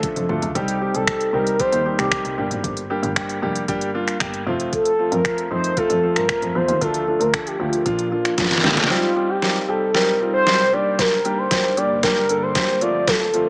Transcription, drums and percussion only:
0.03 kick loud
0.03 closed hi-hat medium
0.03 high tom medium
0.16 closed hi-hat soft
0.16 mid tom medium
0.29 mid tom medium
0.42 closed hi-hat soft
0.42 floor tom medium
0.55 kick loud
0.55 closed hi-hat medium
0.68 closed hi-hat medium
0.95 closed hi-hat soft
1.07 finger snap loud
1.07 kick loud
1.07 closed hi-hat medium
1.21 closed hi-hat medium
1.47 closed hi-hat medium
1.60 kick loud
1.60 closed hi-hat medium
1.73 closed hi-hat medium
1.99 finger snap medium
1.99 closed hi-hat soft
2.12 finger snap loud
2.12 kick loud
2.12 closed hi-hat medium
2.25 closed hi-hat soft
2.51 closed hi-hat soft
2.64 kick loud
2.64 closed hi-hat medium
2.77 closed hi-hat medium
3.03 closed hi-hat soft
3.16 finger snap loud
3.16 kick loud
3.16 closed hi-hat medium
3.29 closed hi-hat medium
3.56 closed hi-hat medium
3.68 kick loud
3.68 closed hi-hat medium
3.81 closed hi-hat medium
4.08 finger snap medium
4.08 closed hi-hat soft
4.20 finger snap loud
4.20 kick loud
4.20 closed hi-hat medium
4.34 closed hi-hat soft
4.60 closed hi-hat soft
4.73 kick loud
4.73 closed hi-hat medium
4.85 closed hi-hat medium
5.12 closed hi-hat soft
5.25 finger snap loud
5.25 kick loud
5.25 closed hi-hat medium
5.38 closed hi-hat medium
5.64 closed hi-hat medium
5.77 kick loud
5.77 closed hi-hat medium
5.90 closed hi-hat medium
6.16 finger snap medium
6.16 closed hi-hat medium
6.29 finger snap loud
6.29 kick loud
6.29 closed hi-hat medium
6.42 closed hi-hat soft
6.68 closed hi-hat soft
6.81 kick loud
6.81 closed hi-hat medium
6.94 closed hi-hat medium
7.21 closed hi-hat soft
7.34 finger snap loud
7.34 kick loud
7.34 closed hi-hat medium
7.47 closed hi-hat medium
7.73 closed hi-hat medium
7.86 kick loud
7.86 closed hi-hat medium
7.99 closed hi-hat medium
8.25 finger snap medium
8.25 closed hi-hat soft
8.38 kick loud
8.38 snare medium
8.38 closed hi-hat medium
8.45 snare medium
8.51 snare medium
8.51 closed hi-hat soft
8.58 snare medium
8.64 snare medium
8.71 snare medium
8.77 snare loud
8.77 closed hi-hat soft
8.84 snare medium
8.90 snare medium
9.42 snare medium
9.95 snare medium
10.47 snare medium
10.99 kick loud
10.99 snare medium
10.99 closed hi-hat medium
11.25 closed hi-hat soft
11.51 kick loud
11.51 snare medium
11.51 closed hi-hat medium
11.77 closed hi-hat soft
12.03 kick loud
12.03 snare medium
12.03 closed hi-hat medium
12.29 closed hi-hat medium
12.55 kick loud
12.55 snare medium
12.55 closed hi-hat medium
12.81 closed hi-hat soft
13.08 kick loud
13.08 snare medium
13.08 closed hi-hat medium
13.34 closed hi-hat soft

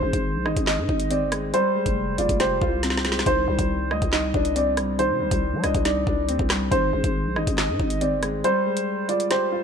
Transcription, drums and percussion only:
0.13 kick loud
0.13 closed hi-hat medium
0.46 cross-stick medium
0.57 kick loud
0.57 closed hi-hat medium
0.67 snare loud
0.67 clap loud
0.89 kick loud
1.00 closed hi-hat medium
1.11 closed hi-hat medium
1.32 cross-stick loud
1.32 closed hi-hat medium
1.54 closed hi-hat medium
1.86 kick loud
1.86 closed hi-hat medium
2.18 closed hi-hat medium
2.29 kick loud
2.29 closed hi-hat medium
2.40 snare medium
2.40 closed hi-hat medium
2.62 kick loud
2.83 snare medium
2.83 closed hi-hat medium
2.90 snare medium
2.97 snare medium
3.05 snare medium
3.05 closed hi-hat medium
3.12 snare loud
3.19 snare loud
3.26 kick loud
3.26 closed hi-hat medium
3.59 kick loud
3.59 closed hi-hat medium
3.91 cross-stick medium
4.02 kick loud
4.02 closed hi-hat medium
4.13 snare loud
4.13 clap medium
4.34 kick loud
4.45 closed hi-hat medium
4.56 closed hi-hat medium
4.77 cross-stick medium
4.77 closed hi-hat medium
4.99 closed hi-hat medium
5.31 kick loud
5.31 closed hi-hat medium
5.64 cross-stick medium
5.64 closed hi-hat medium
5.75 kick loud
5.75 closed hi-hat medium
5.85 snare medium
5.85 closed hi-hat medium
6.07 kick loud
6.29 closed hi-hat medium
6.39 kick medium
6.50 cross-stick medium
6.50 snare loud
6.50 clap medium
6.50 closed hi-hat medium
6.72 kick loud
6.72 closed hi-hat medium
7.04 kick loud
7.04 closed hi-hat medium
7.36 cross-stick medium
7.47 kick loud
7.47 closed hi-hat medium
7.58 snare loud
7.58 clap medium
7.80 kick loud
7.90 closed hi-hat medium
8.01 closed hi-hat medium
8.23 cross-stick medium
8.23 closed hi-hat medium
8.44 closed hi-hat medium
8.77 closed hi-hat medium
9.09 closed hi-hat medium
9.20 closed hi-hat medium
9.31 snare medium
9.31 closed hi-hat medium

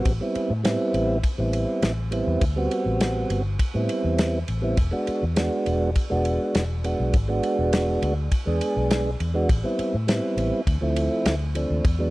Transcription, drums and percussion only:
0.05 kick loud
0.05 ride medium
0.35 ride medium
0.65 snare loud
0.65 ride medium
0.94 ride medium
1.24 kick medium
1.24 ride medium
1.53 ride medium
1.82 snare loud
1.82 ride medium
2.12 ride medium
2.41 kick loud
2.41 ride medium
2.71 ride medium
3.00 snare loud
3.00 ride medium
3.30 ride medium
3.59 kick medium
3.59 ride medium
3.89 ride medium
4.18 snare loud
4.18 ride medium
4.48 ride medium
4.77 kick loud
4.77 ride medium
5.07 ride medium
5.36 snare loud
5.36 ride medium
5.66 ride medium
5.96 kick medium
5.96 ride medium
6.25 ride medium
6.55 snare loud
6.55 ride medium
6.84 ride medium
7.14 kick loud
7.14 ride medium
7.43 ride medium
7.73 snare loud
7.73 ride medium
8.02 ride medium
8.32 kick medium
8.32 ride medium
8.61 ride medium
8.91 snare loud
8.91 ride medium
9.20 ride medium
9.49 kick loud
9.49 ride medium
9.79 ride medium
10.08 snare loud
10.08 ride medium
10.38 ride medium
10.67 kick medium
10.67 ride medium
10.96 ride medium
11.26 snare loud
11.26 ride medium
11.55 ride medium
11.85 kick loud
11.85 ride medium

